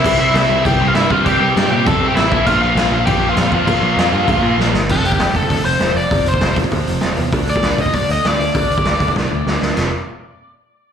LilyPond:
<<
  \new Staff \with { instrumentName = "Lead electric guitar" } { \time 4/4 \key f \major \tempo 4 = 197 <e' e''>8 <e' e''>4. <g' g''>8. <f' f''>16 <e' e''>8 <f' f''>8 | <g' g''>8 <g' g''>4 <g' g''>8 <a' a''>8. <g' g''>16 <e' e''>8 <e' e''>8 | <f' f''>8 <f' f''>4. <g' g''>8. <f' f''>8. <f' f''>8~ | <f' f''>2. r4 |
a'8 g'4 a'4 c''4 d''8~ | d''8 c''4 r2 r8 | r8 d''4 ees''8 d''8 ees''8 d''4~ | d''2 r2 |
r1 | }
  \new Staff \with { instrumentName = "Distorted electric guitar" } { \clef bass \time 4/4 \key f \major <c g c'>4 <c g c'>2~ <c g c'>8 <c g c'>8~ | <c g c'>4 <c g c'>2~ <c g c'>8 <bes, f bes>8~ | <bes, f bes>4 <bes, f bes>2~ <bes, f bes>8 <bes, f bes>8~ | <bes, f bes>4 <bes, f bes>2~ <bes, f bes>8 r8 |
r1 | r1 | r1 | r1 |
r1 | }
  \new Staff \with { instrumentName = "Distorted electric guitar" } { \clef bass \time 4/4 \key f \major <c g c'>2.~ <c g c'>8 <c g c'>8~ | <c g c'>2.~ <c g c'>8 <bes, f bes>8~ | <bes, f bes>2.~ <bes, f bes>8 <bes, f bes>8~ | <bes, f bes>2.~ <bes, f bes>8 r8 |
<f, c f>4. <f, c f>2~ <f, c f>8 | <f, c f>4. <f, c f>2~ <f, c f>8 | <d a d'>4. <d a d'>2~ <d a d'>8 | <d a d'>4. <d a d'>2~ <d a d'>8 |
<f, c f>8 r2. r8 | }
  \new Staff \with { instrumentName = "Distorted electric guitar" } { \clef bass \time 4/4 \key f \major <c g c'>2 <c g c'>8 <c g c'>4 <c g c'>8~ | <c g c'>2 <c g c'>8 <c g c'>4 <bes, f bes>8~ | <bes, f bes>2 <bes, f bes>8 <bes, f bes>4 <bes, f bes>8~ | <bes, f bes>2 <bes, f bes>8 <bes, f bes>4 r8 |
<f, c f>1 | <f, c f>1 | <d a d'>1 | <d a d'>1 |
<f, c f>8 r2. r8 | }
  \new Staff \with { instrumentName = "Picked electric bass" } { \clef bass \time 4/4 \key f \major c,4 c,8 c,8 c,8 c,8 g,4 | c,8 c,8 g,8 bes,8 f,8 c8 a,,8 bes,,8 | bes,,4 bes,,8 bes,,8 bes,,8 bes,,8 f,4 | bes,,8 bes,,8 f,8 g,8 d,8 bes,8 bes,,8 g,,8 |
f,,8 f,,8 f,,8 f,,8 d,8 f,,8 f,,8 f,,8 | f,,8 f,,8 f,,8 f,,8 d,8 f,,8 f,,8 e,8 | d,8 d,8 d,8 d,8 c,8 d,8 d,8 d,8 | d,8 d,8 d,8 d,8 c,8 d,8 d,8 d,8 |
f,,8 r2. r8 | }
  \new DrumStaff \with { instrumentName = "Drums" } \drummode { \time 4/4 <cymc bd>4 <cymc sn>4 <cymc bd>4 <cymc sn>8 bd8 | <cymc bd>4 <cymc sn>4 <cymc bd>4 <cymc sn>8 bd8 | <cymc bd>4 <cymc sn>4 <cymc bd>4 <cymc sn>8 bd8 | <cymc bd>4 <cymc sn>4 <cymc bd>4 sn8 sn8 |
<cymc bd>8 hho16 bd16 <hho sn>8 <hho bd>16 bd16 <hho bd>8 hho8 <hho sn>8 hho8 | <hho bd>8 hho16 bd16 <hho sn>8 <hho bd>16 bd16 <hho bd>8 hho8 <hho sn>8 hho8 | <hho bd>8 hho16 bd16 <hho sn>8 <hho bd>16 bd16 <hho bd>8 hho8 <hho sn>8 hho8 | <hho bd>8 hho16 bd16 <hho sn>8 <hho bd>16 bd16 <bd sn>4 sn8 sn8 |
<cymc sn>4 r4 r4 r4 | }
>>